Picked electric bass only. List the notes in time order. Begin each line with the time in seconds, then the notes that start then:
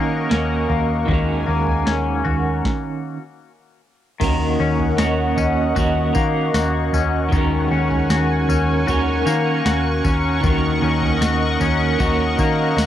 Already playing: D#3
0.31 D#2
0.70 D#2
1.09 D#2
1.48 D#2
1.87 D#2
2.26 D#2
4.21 D#2
4.60 D#2
4.98 D#2
5.37 D#2
5.76 D#2
6.15 D#3
6.54 D#2
6.93 D#2
7.32 D#2
7.71 D#2
8.10 D#2
8.49 D#2
8.88 D#2
9.26 D#3
9.66 D#2
10.05 D#2
10.44 D#2
10.82 D#2
11.21 D#2
11.60 D#2
11.99 D#2
12.39 D#3
12.77 D#2